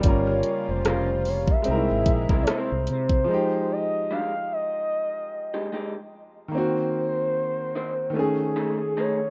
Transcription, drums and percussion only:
0.03 kick, closed hi-hat
0.27 cross-stick
0.43 closed hi-hat
0.85 cross-stick, closed hi-hat
1.25 open hi-hat
1.48 kick
1.64 closed hi-hat
2.06 kick, closed hi-hat
2.29 kick
2.47 cross-stick, closed hi-hat
2.87 closed hi-hat
3.09 kick

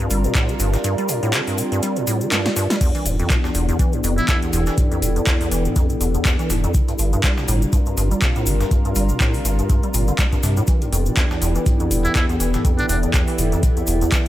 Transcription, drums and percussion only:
0.10 closed hi-hat, open hi-hat, cabasa
0.24 closed hi-hat, cabasa
0.35 kick, snare, clap, closed hi-hat, cabasa
0.49 closed hi-hat, cabasa
0.60 closed hi-hat, open hi-hat, cabasa
0.73 snare, closed hi-hat, cabasa
0.84 closed hi-hat, cabasa
0.98 closed hi-hat, cabasa
1.09 closed hi-hat, open hi-hat, cabasa
1.23 closed hi-hat, cabasa
1.33 snare, clap, closed hi-hat, cabasa
1.47 open hi-hat, cabasa
1.58 closed hi-hat, open hi-hat, cabasa
1.72 closed hi-hat, cabasa
1.83 closed hi-hat, cabasa
1.96 closed hi-hat, cabasa
2.07 closed hi-hat, open hi-hat, cabasa
2.21 closed hi-hat, cabasa
2.32 snare, clap, closed hi-hat, cabasa
2.46 snare, closed hi-hat, cabasa
2.56 snare, closed hi-hat, open hi-hat, cabasa
2.70 snare, closed hi-hat, cabasa
2.81 kick, closed hi-hat, crash, cabasa
2.95 closed hi-hat, cabasa
3.06 closed hi-hat, open hi-hat, cabasa
3.19 closed hi-hat, cabasa
3.30 kick, snare, clap, closed hi-hat, cabasa
3.44 snare, cabasa
3.55 closed hi-hat, open hi-hat, cabasa
3.69 closed hi-hat, cabasa
3.79 kick, closed hi-hat, cabasa
3.93 closed hi-hat, cabasa
4.04 closed hi-hat, open hi-hat, cabasa
4.18 closed hi-hat, cabasa
4.28 kick, snare, clap, closed hi-hat, cabasa
4.42 closed hi-hat, cabasa
4.53 closed hi-hat, open hi-hat, cabasa
4.66 snare, closed hi-hat, cabasa
4.78 kick, closed hi-hat, cabasa
4.92 closed hi-hat, cabasa
5.02 closed hi-hat, open hi-hat, cabasa
5.16 closed hi-hat, cabasa
5.27 kick, snare, clap, closed hi-hat, cabasa
5.41 open hi-hat, cabasa
5.51 closed hi-hat, open hi-hat, cabasa
5.65 closed hi-hat, cabasa
5.76 kick, closed hi-hat, cabasa
5.89 closed hi-hat, cabasa
6.01 closed hi-hat, open hi-hat, cabasa
6.14 closed hi-hat, cabasa
6.25 kick, snare, clap, closed hi-hat, cabasa
6.39 closed hi-hat, cabasa
6.50 snare, closed hi-hat, open hi-hat, cabasa
6.64 closed hi-hat, cabasa
6.74 kick, closed hi-hat, cabasa
6.88 closed hi-hat, cabasa
6.99 closed hi-hat, open hi-hat, cabasa
7.13 closed hi-hat, cabasa
7.24 kick, snare, clap, closed hi-hat, cabasa
7.37 snare, cabasa
7.48 closed hi-hat, open hi-hat, cabasa
7.62 closed hi-hat, cabasa
7.72 kick, closed hi-hat, cabasa
7.86 closed hi-hat, cabasa
7.97 closed hi-hat, open hi-hat, cabasa
8.11 closed hi-hat, cabasa
8.22 kick, snare, clap, closed hi-hat, cabasa
8.36 closed hi-hat, cabasa
8.46 closed hi-hat, open hi-hat, cabasa
8.60 snare, closed hi-hat, cabasa
8.71 kick, closed hi-hat, cabasa
8.85 closed hi-hat, cabasa
8.95 closed hi-hat, open hi-hat, cabasa
9.09 closed hi-hat, cabasa
9.20 kick, snare, clap, closed hi-hat, cabasa
9.33 open hi-hat, cabasa
9.45 closed hi-hat, open hi-hat, cabasa
9.59 closed hi-hat, cabasa
9.69 kick, closed hi-hat, cabasa
9.83 closed hi-hat, cabasa
9.94 closed hi-hat, open hi-hat, cabasa
10.08 closed hi-hat, cabasa
10.19 kick, snare, clap, closed hi-hat, cabasa
10.32 kick, closed hi-hat, cabasa
10.43 snare, closed hi-hat, open hi-hat, cabasa
10.57 closed hi-hat, cabasa
10.67 kick, closed hi-hat, cabasa
10.82 closed hi-hat, cabasa
10.92 closed hi-hat, open hi-hat, cabasa
11.06 closed hi-hat, cabasa
11.17 kick, snare, clap, closed hi-hat, cabasa
11.31 snare, cabasa
11.42 closed hi-hat, open hi-hat, cabasa
11.55 closed hi-hat, cabasa
11.66 kick, closed hi-hat, cabasa
11.80 closed hi-hat, cabasa
11.91 closed hi-hat, open hi-hat, cabasa
12.05 closed hi-hat, cabasa
12.16 kick, snare, clap, closed hi-hat, cabasa
12.29 closed hi-hat, cabasa
12.40 closed hi-hat, open hi-hat, cabasa
12.54 snare, closed hi-hat, cabasa
12.65 kick, closed hi-hat, cabasa
12.79 closed hi-hat, cabasa
12.89 closed hi-hat, open hi-hat, cabasa
13.03 closed hi-hat, cabasa
13.14 kick, snare, clap, closed hi-hat, cabasa
13.27 open hi-hat, cabasa
13.38 closed hi-hat, open hi-hat, cabasa
13.52 closed hi-hat, cabasa
13.63 kick, closed hi-hat, cabasa
13.77 closed hi-hat, cabasa
13.87 closed hi-hat, open hi-hat, cabasa
14.01 closed hi-hat, cabasa
14.12 kick, snare, clap, closed hi-hat, cabasa

